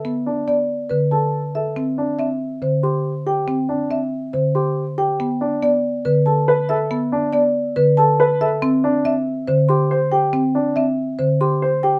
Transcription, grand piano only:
\new Staff \with { instrumentName = "Grand piano" } { \time 4/4 \key c \major \tempo 4 = 140 r8 d'8 r4. a'8 r8 a'8 | r8 d'8 r4. g'8 r8 g'8 | r8 d'8 r4. g'8 r8 g'8 | r8 d'8 r4. a'8 b'8 a'8 |
r8 d'8 r4. a'8 b'8 a'8 | r8 d'8 r4. g'8 c''8 g'8 | r8 d'8 r4. g'8 c''8 g'8 | }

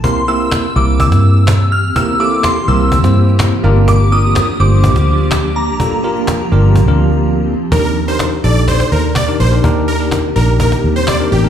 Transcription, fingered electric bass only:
\new Staff \with { instrumentName = "Fingered electric bass" } { \clef bass \time 4/4 \key ees \lydian \tempo 4 = 125 c,4. c,8. g,4.~ g,16 | c,4. c,8. g,4~ g,16 g,,8~ | g,,4. g,,8. d,4.~ d,16 | g,,4. g,,8. d,4.~ d,16 |
ees,4. bes,,4 ees,4 bes,,8 | ees,4. bes,,4 ees,4 a,,8 | }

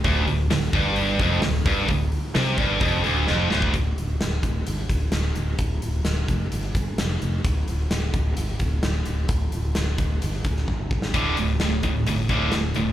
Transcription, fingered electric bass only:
\new Staff \with { instrumentName = "Fingered electric bass" } { \clef bass \time 4/4 \key d \minor \tempo 4 = 130 d,,8 d,,8 d,,8 g,,4 f,,8 d,,8 g,,8 | d,,8 r8 c,8 g,,8 f,,8 d,,8 f,,8 d,,8 | d,,8 d,,8 d,,8 d,,8 g,,8 d,,8 d,,8 d,,8 | d,,8 d,,8 d,,8 f,,8 g,,8 g,,8 f,,8 f,,8 |
d,,8 d,,8 d,,8 d,,8 g,,8 d,,8 d,,8 d,,8 | d,,8 d,,8 d,,8 d,,8 g,,8 d,,8 g,,8 g,,8 | d,,8 d,,8 d,,8 d,,8 g,,8 d,,8 d,,8 d,,8 | }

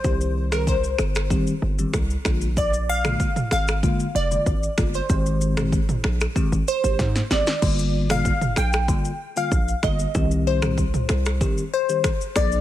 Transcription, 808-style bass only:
\new Staff \with { instrumentName = "808-style bass" } { \clef bass \time 4/4 \key c \minor \tempo 4 = 95 c,4. g,,8. r16 g,,8 c,8 bes,,8~ | bes,,4. aes,,8. r16 f,,8 aes,,8 g,,8 | aes,,4. bes,,8 r16 aes,,16 r16 aes,,16 aes,8 aes,,16 r16 | g,,4. bes,,8. r8. bes,,8 g,,8 |
c,4. c,8. r4 r16 bes,,8 | }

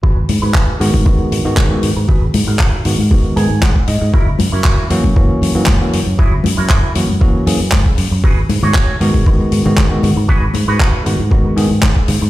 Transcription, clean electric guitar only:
\new Staff \with { instrumentName = "Clean electric guitar" } { \time 4/4 \key gis \minor \tempo 4 = 117 <fis' gis' b'>16 r8 <fis' gis' b'>8. r2 r8 | <fis' gis' b'>16 r8 <fis' gis' ais'>8. r4 gis''8 fis''8 dis''8 | <e' fis' ais'>16 r8 <e' fis' ais'>8. r2 r8 | <e' fis' gis'>16 r8 <e' fis' ais'>8. r2 r8 |
<fis' gis' b'>16 r8 <fis' gis' cis''>8. r2 r8 | <fis' gis' b'>16 r8 <fis' gis' b'>8. r2 r8 | }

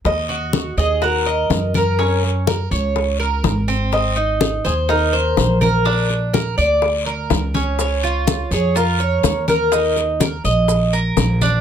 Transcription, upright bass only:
\new Staff \with { instrumentName = "Upright bass" } { \clef bass \time 4/4 \key ees \minor \tempo 4 = 124 ees,4. ees,4. ges,4~ | ges,4. des,4. aes,,4~ | aes,,4. ees,4. bes,,4~ | bes,,4. d,4. des,4~ |
des,4. f,4. ees,4~ | ees,4. bes,,4. bes,,4 | }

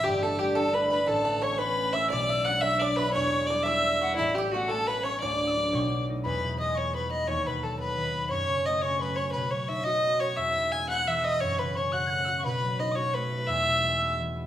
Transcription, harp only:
\new Staff \with { instrumentName = "Harp" } { \time 6/8 \key a \mixolydian \tempo 4. = 116 <g,, g,>4 <g a d'>8 <g a d'>4 <g a d'>8 | <a,, a,>4 <a b cis'>8 <a b cis'>4 <a b cis'>8 | <b,, b,>4 <fis b d'>8 <fis b d'>4 <fis b d'>8 | <e,, e,>4 <g b e'>8 <g b e'>4 <g b e'>8 |
<a,, a,>4 <a b cis'>8 <a b cis'>4 <a b cis'>8 | <d,, d,>4 <fis b d'>8 <b,, b,>4 <a b dis'>8 | \key e \major e,8 b,8 gis8 b8 e8 b8 | dis,8 b,8 fis8 b8 dis8 b8 |
fis,8 cis8 a8 cis'8 fis8 cis'8 | b,8 fis8 dis'8 fis'8 b8 fis'8 | e,8 b,8 gis8 b8 e8 b8 | fis,8 cis8 cis'8 fis'8 a8 fis'8 |
b,8 fis8 dis'8 fis'8 a8 fis'8 | e,8 b,8 gis8 b8 e8 b8 | }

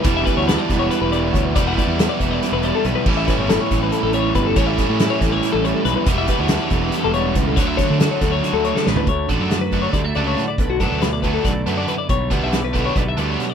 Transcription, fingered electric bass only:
\new Staff \with { instrumentName = "Fingered electric bass" } { \clef bass \time 7/8 \key d \major \tempo 4 = 140 e,,8 r16 d,8 r16 e,,8 r16 e,,8. d,8 | e,,8 r16 e,8 r16 e,,8 r16 e,,8 r16 b,,16 r16 | a,,8 r16 g,,8 r16 a,,8 r16 a,,8. g,,8 | a,,8 r16 a,8 r16 a,,8 r16 a,,8 r16 b,,16 r16 |
e,,8 r16 d,8 r16 e,,8 r16 e,,8. cis,8 | d,8 r16 d8 r16 d,8 r16 d,8 r16 a,,16 r16 | d,8 a,,16 fis,4~ fis,16 d,8 cis,8 r8 | b,,8 fis,16 d,4~ d,16 b,,8 fis,8 r8 |
b,,8 d,16 b,,4~ b,,16 b,,8 d,8 r8 | }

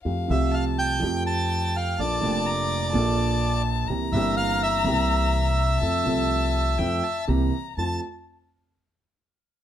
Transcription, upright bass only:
\new Staff \with { instrumentName = "Upright bass" } { \clef bass \time 4/4 \key f \major \tempo 4 = 125 f,8 c,4. f,2 | bes,,8 f,,4. bes,,2 | c,8 g,,4. c,2 | f,8 c,4. f,8 r8 c,8 r8 |
f,8 r2. r8 | }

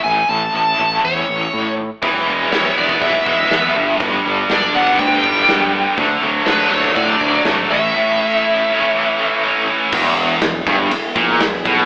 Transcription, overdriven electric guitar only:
\new Staff \with { instrumentName = "Overdriven electric guitar" } { \clef bass \time 4/4 \key a \major \tempo 4 = 121 <a, e a cis' e'>4. <a, e a cis' e'>2 r8 | <e gis b e'>2 <e gis b e'>4. <g, d g b d'>8~ | <g, d g b d'>4. <g, d g b d'>2 r8 | <d fis a d'>2 <d fis a d'>4. <a, e a cis' e'>8~ |
<a, e a cis' e'>4. <a, e a cis' e'>2 r8 | e,4 e,8 g,8 r8 ais,8 e,8 b,8 | }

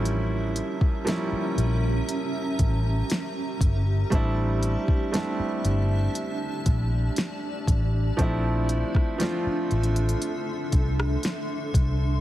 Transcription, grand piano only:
\new Staff \with { instrumentName = "Grand piano" } { \time 4/4 \key a \phrygian \tempo 4 = 59 <f g bes cis' e'>8 r8 <f g bes cis' e'>4. r4. | <g a c' d' e'>8 r8 <g a c' d' e'>4. r4. | <f a c' d' e'>8 r8 <f a c' d' f'>4. r4. | }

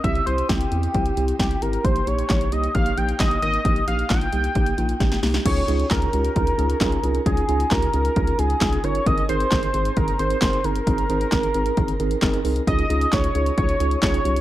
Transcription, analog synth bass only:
\new Staff \with { instrumentName = "Analog synth bass" } { \clef bass \time 4/4 \key des \lydian \tempo 4 = 133 c,8 c,8 c,8 e,8 c,8 c,8 c,8 aes,,8 | bes,,8 bes,,8 bes,,8 c,8 bes,,8 bes,,8 bes,,8 aes,,8 | bes,,8 bes,,8 bes,,8 c,8 bes,,8 bes,,8 bes,,8 c,8 | des,8 des,8 des,8 des,8 des,8 des,8 c,8 c,8 |
des,8 des,8 des,8 des,8 des,8 des,8 c,8 g,,8 | aes,,8 aes,,8 aes,,8 aes,,8 aes,,8 aes,,8 g,,8 g,,8 | aes,,8 aes,,8 aes,,8 aes,,8 aes,,8 aes,,8 g,,8 c,8 | des,8 des,8 des,8 des,8 des,8 des,8 c,8 c,8 | }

